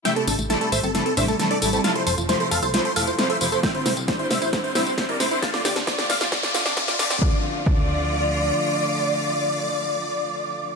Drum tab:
HH |xxoxxxoxxxoxxxox|xxoxxxoxxxoxxxox|xxoxxxoxxxoxxxox|xxoxxxoxxxoxxxox|
TB |x-xxx-xxx-xxx-xx|x-xxx-xxx-xxx-xx|x-xxx-xxx-xxx-xx|x-xx--xxx-xxx-xx|
SD |o---o---o---o---|o---o---o---o---|o-o-o-o-o-o-o-o-|oooooooooooooooo|
BD |----------------|----------------|o---o---o---o---|o---o---o---o---|

HH |----------------|----------------|
TB |----------------|----------------|
SD |----------------|----------------|
BD |o---o-----------|----------------|